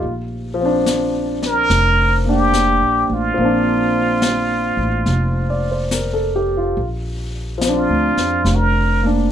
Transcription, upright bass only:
0, 0, Header, 1, 2, 480
1, 0, Start_track
1, 0, Key_signature, -2, "major"
1, 0, Tempo, 837989
1, 11, Time_signature, 4, 2, 24, 8
1, 2411, Tempo, 848656
1, 5299, End_track
2, 0, Start_track
2, 0, Title_t, "Upright bass"
2, 0, Program_c, 0, 32
2, 14, Note_on_c, 0, 34, 57
2, 948, Note_off_c, 0, 34, 0
2, 973, Note_on_c, 0, 29, 77
2, 1588, Note_off_c, 0, 29, 0
2, 1613, Note_on_c, 0, 34, 51
2, 1760, Note_off_c, 0, 34, 0
2, 1772, Note_on_c, 0, 33, 54
2, 1920, Note_off_c, 0, 33, 0
2, 1934, Note_on_c, 0, 34, 66
2, 2708, Note_off_c, 0, 34, 0
2, 2729, Note_on_c, 0, 33, 59
2, 2878, Note_off_c, 0, 33, 0
2, 2891, Note_on_c, 0, 29, 75
2, 3833, Note_off_c, 0, 29, 0
2, 3859, Note_on_c, 0, 34, 69
2, 4476, Note_off_c, 0, 34, 0
2, 4494, Note_on_c, 0, 38, 55
2, 4643, Note_off_c, 0, 38, 0
2, 4649, Note_on_c, 0, 41, 53
2, 4800, Note_off_c, 0, 41, 0
2, 4807, Note_on_c, 0, 29, 75
2, 5299, Note_off_c, 0, 29, 0
2, 5299, End_track
0, 0, End_of_file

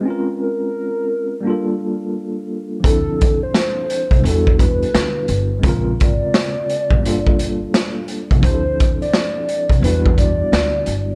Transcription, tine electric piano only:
0, 0, Header, 1, 2, 480
1, 0, Start_track
1, 0, Tempo, 697674
1, 36, Time_signature, 4, 2, 24, 8
1, 7671, End_track
2, 0, Start_track
2, 0, Title_t, "Tine electric piano"
2, 0, Program_c, 0, 4
2, 0, Control_c, 0, 64, 127
2, 5, Note_on_c, 0, 56, 72
2, 20, Note_on_c, 0, 60, 66
2, 36, Note_on_c, 0, 61, 72
2, 44, Control_c, 0, 64, 0
2, 52, Note_on_c, 0, 65, 64
2, 70, Note_on_c, 0, 70, 77
2, 148, Control_c, 0, 64, 127
2, 961, Note_off_c, 0, 56, 0
2, 965, Note_on_c, 0, 55, 73
2, 969, Note_off_c, 0, 60, 0
2, 977, Note_off_c, 0, 61, 0
2, 983, Note_on_c, 0, 58, 71
2, 986, Note_off_c, 0, 65, 0
2, 994, Note_off_c, 0, 70, 0
2, 997, Note_on_c, 0, 62, 66
2, 1005, Control_c, 0, 64, 0
2, 1013, Note_on_c, 0, 65, 67
2, 1030, Note_on_c, 0, 69, 78
2, 1129, Control_c, 0, 64, 127
2, 1922, Note_off_c, 0, 55, 0
2, 1927, Note_on_c, 0, 53, 56
2, 1930, Note_off_c, 0, 58, 0
2, 1938, Note_off_c, 0, 62, 0
2, 1945, Note_on_c, 0, 60, 57
2, 1946, Note_off_c, 0, 65, 0
2, 1954, Note_off_c, 0, 69, 0
2, 1961, Note_on_c, 0, 62, 55
2, 1964, Control_c, 0, 64, 0
2, 1977, Note_on_c, 0, 64, 54
2, 1993, Note_on_c, 0, 69, 65
2, 2081, Control_c, 0, 64, 127
2, 2883, Note_off_c, 0, 53, 0
2, 2891, Note_off_c, 0, 60, 0
2, 2892, Note_on_c, 0, 55, 61
2, 2899, Note_off_c, 0, 62, 0
2, 2908, Note_off_c, 0, 64, 0
2, 2910, Note_on_c, 0, 59, 56
2, 2916, Note_off_c, 0, 69, 0
2, 2924, Note_on_c, 0, 62, 57
2, 2926, Control_c, 0, 64, 0
2, 2942, Note_on_c, 0, 64, 54
2, 2957, Note_on_c, 0, 66, 65
2, 3052, Control_c, 0, 64, 127
2, 3845, Note_off_c, 0, 55, 0
2, 3849, Note_on_c, 0, 56, 74
2, 3854, Note_off_c, 0, 59, 0
2, 3861, Note_off_c, 0, 62, 0
2, 3865, Note_on_c, 0, 60, 63
2, 3870, Note_off_c, 0, 64, 0
2, 3878, Note_off_c, 0, 66, 0
2, 3882, Note_on_c, 0, 49, 67
2, 3886, Control_c, 0, 64, 0
2, 3897, Note_on_c, 0, 65, 69
2, 3915, Note_on_c, 0, 70, 82
2, 4004, Control_c, 0, 64, 127
2, 4803, Note_off_c, 0, 56, 0
2, 4810, Note_on_c, 0, 55, 71
2, 4811, Note_off_c, 0, 60, 0
2, 4820, Note_off_c, 0, 49, 0
2, 4827, Note_on_c, 0, 58, 64
2, 4828, Note_off_c, 0, 65, 0
2, 4837, Note_off_c, 0, 70, 0
2, 4841, Note_on_c, 0, 62, 68
2, 4845, Control_c, 0, 64, 0
2, 4858, Note_on_c, 0, 65, 71
2, 4875, Note_on_c, 0, 69, 76
2, 4980, Control_c, 0, 64, 127
2, 5764, Note_off_c, 0, 55, 0
2, 5768, Note_on_c, 0, 53, 64
2, 5772, Note_off_c, 0, 58, 0
2, 5780, Note_off_c, 0, 62, 0
2, 5786, Note_on_c, 0, 60, 55
2, 5788, Note_off_c, 0, 65, 0
2, 5797, Note_off_c, 0, 69, 0
2, 5802, Note_on_c, 0, 62, 59
2, 5804, Control_c, 0, 64, 0
2, 5819, Note_on_c, 0, 64, 59
2, 5834, Note_on_c, 0, 67, 55
2, 5873, Note_off_c, 0, 67, 0
2, 5879, Note_on_c, 0, 69, 67
2, 5927, Control_c, 0, 64, 127
2, 6723, Note_off_c, 0, 53, 0
2, 6730, Note_on_c, 0, 54, 47
2, 6732, Note_off_c, 0, 60, 0
2, 6740, Note_off_c, 0, 62, 0
2, 6745, Note_on_c, 0, 59, 58
2, 6749, Note_off_c, 0, 64, 0
2, 6762, Note_on_c, 0, 62, 53
2, 6765, Control_c, 0, 64, 0
2, 6774, Note_on_c, 0, 55, 62
2, 6777, Note_on_c, 0, 64, 57
2, 6779, Note_off_c, 0, 69, 0
2, 6795, Note_on_c, 0, 66, 65
2, 6801, Note_off_c, 0, 54, 0
2, 6871, Control_c, 0, 64, 127
2, 7671, Note_off_c, 0, 55, 0
2, 7671, Note_off_c, 0, 59, 0
2, 7671, Note_off_c, 0, 62, 0
2, 7671, Note_off_c, 0, 64, 0
2, 7671, Note_off_c, 0, 66, 0
2, 7671, End_track
0, 0, End_of_file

